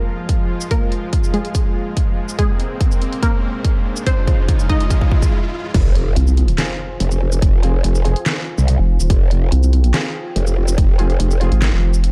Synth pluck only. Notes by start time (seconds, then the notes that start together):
Already playing: A#3 A#4
0.71 A#3 A#4
1.34 G#3 G#4
2.39 G#3 G#4
3.23 A#3 A#4
4.07 C4 C5
4.69 D#4 D#5